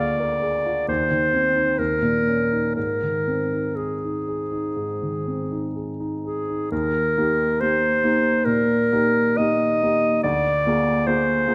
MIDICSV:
0, 0, Header, 1, 3, 480
1, 0, Start_track
1, 0, Key_signature, -4, "major"
1, 0, Tempo, 896861
1, 956, Tempo, 985222
1, 1429, Time_signature, 4, 2, 24, 8
1, 3355, Key_signature, -3, "major"
1, 3356, Tempo, 867052
1, 4316, Tempo, 921659
1, 4796, Tempo, 864553
1, 5276, Tempo, 819672
1, 6046, End_track
2, 0, Start_track
2, 0, Title_t, "Clarinet"
2, 0, Program_c, 0, 71
2, 0, Note_on_c, 0, 74, 53
2, 471, Note_off_c, 0, 74, 0
2, 475, Note_on_c, 0, 72, 53
2, 956, Note_on_c, 0, 70, 47
2, 963, Note_off_c, 0, 72, 0
2, 1426, Note_off_c, 0, 70, 0
2, 1429, Note_on_c, 0, 70, 41
2, 1917, Note_on_c, 0, 68, 34
2, 1925, Note_off_c, 0, 70, 0
2, 2882, Note_off_c, 0, 68, 0
2, 3128, Note_on_c, 0, 68, 39
2, 3341, Note_off_c, 0, 68, 0
2, 3360, Note_on_c, 0, 70, 62
2, 3850, Note_on_c, 0, 72, 55
2, 3858, Note_off_c, 0, 70, 0
2, 4317, Note_on_c, 0, 70, 61
2, 4325, Note_off_c, 0, 72, 0
2, 4798, Note_on_c, 0, 75, 59
2, 4806, Note_off_c, 0, 70, 0
2, 5272, Note_off_c, 0, 75, 0
2, 5276, Note_on_c, 0, 74, 64
2, 5764, Note_on_c, 0, 72, 59
2, 5773, Note_off_c, 0, 74, 0
2, 6046, Note_off_c, 0, 72, 0
2, 6046, End_track
3, 0, Start_track
3, 0, Title_t, "Grand piano"
3, 0, Program_c, 1, 0
3, 0, Control_c, 1, 64, 127
3, 0, Note_on_c, 1, 38, 45
3, 0, Note_on_c, 1, 50, 30
3, 0, Note_on_c, 1, 58, 36
3, 0, Note_on_c, 1, 65, 33
3, 0, Note_on_c, 1, 68, 31
3, 63, Note_off_c, 1, 65, 0
3, 107, Note_on_c, 1, 70, 31
3, 182, Note_off_c, 1, 68, 0
3, 225, Note_on_c, 1, 68, 35
3, 301, Note_off_c, 1, 70, 0
3, 351, Note_on_c, 1, 65, 33
3, 421, Note_off_c, 1, 68, 0
3, 448, Note_off_c, 1, 38, 0
3, 471, Note_on_c, 1, 39, 38
3, 472, Note_off_c, 1, 65, 0
3, 483, Control_c, 1, 64, 0
3, 486, Note_off_c, 1, 50, 0
3, 489, Note_off_c, 1, 58, 0
3, 569, Control_c, 1, 64, 127
3, 592, Note_on_c, 1, 51, 30
3, 712, Note_on_c, 1, 60, 32
3, 783, Note_off_c, 1, 51, 0
3, 832, Note_on_c, 1, 63, 24
3, 905, Note_off_c, 1, 60, 0
3, 940, Note_off_c, 1, 39, 0
3, 955, Note_off_c, 1, 63, 0
3, 958, Note_on_c, 1, 39, 33
3, 965, Control_c, 1, 64, 0
3, 1042, Control_c, 1, 64, 127
3, 1071, Note_on_c, 1, 46, 26
3, 1192, Note_on_c, 1, 61, 26
3, 1259, Note_off_c, 1, 46, 0
3, 1312, Note_on_c, 1, 63, 25
3, 1382, Note_off_c, 1, 61, 0
3, 1416, Note_off_c, 1, 39, 0
3, 1431, Note_off_c, 1, 63, 0
3, 1432, Note_on_c, 1, 44, 29
3, 1438, Control_c, 1, 64, 0
3, 1537, Control_c, 1, 64, 127
3, 1558, Note_on_c, 1, 51, 24
3, 1679, Note_on_c, 1, 60, 26
3, 1752, Note_off_c, 1, 51, 0
3, 1805, Note_on_c, 1, 63, 25
3, 1873, Note_off_c, 1, 60, 0
3, 1929, Note_on_c, 1, 68, 24
3, 1997, Note_off_c, 1, 63, 0
3, 2054, Note_on_c, 1, 63, 22
3, 2118, Note_off_c, 1, 68, 0
3, 2172, Note_on_c, 1, 68, 26
3, 2240, Note_off_c, 1, 63, 0
3, 2287, Note_on_c, 1, 63, 23
3, 2359, Note_off_c, 1, 68, 0
3, 2385, Note_off_c, 1, 44, 0
3, 2407, Note_on_c, 1, 44, 25
3, 2477, Note_off_c, 1, 63, 0
3, 2532, Note_on_c, 1, 51, 23
3, 2651, Note_on_c, 1, 60, 24
3, 2720, Note_off_c, 1, 51, 0
3, 2773, Note_on_c, 1, 63, 22
3, 2839, Note_off_c, 1, 60, 0
3, 2891, Note_on_c, 1, 68, 25
3, 2959, Note_off_c, 1, 63, 0
3, 3009, Note_on_c, 1, 63, 26
3, 3080, Note_off_c, 1, 68, 0
3, 3130, Note_on_c, 1, 68, 26
3, 3200, Note_off_c, 1, 63, 0
3, 3249, Note_on_c, 1, 63, 23
3, 3314, Note_off_c, 1, 68, 0
3, 3338, Note_off_c, 1, 44, 0
3, 3358, Note_on_c, 1, 39, 42
3, 3359, Note_off_c, 1, 63, 0
3, 3366, Control_c, 1, 64, 0
3, 3452, Control_c, 1, 64, 127
3, 3597, Note_off_c, 1, 39, 0
3, 3611, Note_on_c, 1, 58, 35
3, 3611, Note_on_c, 1, 63, 31
3, 3617, Note_on_c, 1, 67, 37
3, 3828, Note_off_c, 1, 58, 0
3, 3828, Note_off_c, 1, 63, 0
3, 3831, Note_off_c, 1, 67, 0
3, 3854, Note_on_c, 1, 58, 29
3, 3856, Note_on_c, 1, 63, 28
3, 3859, Note_on_c, 1, 67, 32
3, 4064, Note_off_c, 1, 58, 0
3, 4064, Note_off_c, 1, 63, 0
3, 4066, Note_off_c, 1, 67, 0
3, 4090, Note_on_c, 1, 58, 36
3, 4091, Note_on_c, 1, 63, 31
3, 4093, Note_on_c, 1, 67, 35
3, 4297, Note_off_c, 1, 58, 0
3, 4298, Note_off_c, 1, 63, 0
3, 4299, Note_off_c, 1, 67, 0
3, 4323, Note_on_c, 1, 46, 35
3, 4548, Note_off_c, 1, 46, 0
3, 4563, Note_on_c, 1, 58, 34
3, 4565, Note_on_c, 1, 63, 34
3, 4566, Note_on_c, 1, 67, 38
3, 4780, Note_off_c, 1, 58, 0
3, 4782, Note_off_c, 1, 63, 0
3, 4782, Note_off_c, 1, 67, 0
3, 4801, Note_on_c, 1, 58, 35
3, 4805, Note_on_c, 1, 63, 35
3, 4805, Note_on_c, 1, 67, 37
3, 5022, Note_off_c, 1, 58, 0
3, 5024, Note_off_c, 1, 63, 0
3, 5024, Note_off_c, 1, 67, 0
3, 5050, Note_on_c, 1, 58, 32
3, 5052, Note_on_c, 1, 63, 34
3, 5054, Note_on_c, 1, 67, 33
3, 5257, Note_off_c, 1, 58, 0
3, 5259, Note_off_c, 1, 63, 0
3, 5260, Note_off_c, 1, 67, 0
3, 5279, Note_on_c, 1, 38, 47
3, 5286, Control_c, 1, 64, 0
3, 5380, Control_c, 1, 64, 127
3, 5513, Note_off_c, 1, 38, 0
3, 5527, Note_on_c, 1, 58, 40
3, 5529, Note_on_c, 1, 65, 34
3, 5533, Note_on_c, 1, 68, 42
3, 5740, Note_off_c, 1, 58, 0
3, 5741, Note_off_c, 1, 65, 0
3, 5743, Note_off_c, 1, 68, 0
3, 5766, Note_on_c, 1, 58, 35
3, 5766, Note_on_c, 1, 65, 36
3, 5771, Note_on_c, 1, 68, 38
3, 5976, Note_off_c, 1, 58, 0
3, 5977, Note_off_c, 1, 65, 0
3, 5979, Note_off_c, 1, 68, 0
3, 6004, Note_on_c, 1, 58, 36
3, 6004, Note_on_c, 1, 65, 37
3, 6008, Note_on_c, 1, 68, 39
3, 6046, Note_off_c, 1, 58, 0
3, 6046, Note_off_c, 1, 65, 0
3, 6046, Note_off_c, 1, 68, 0
3, 6046, End_track
0, 0, End_of_file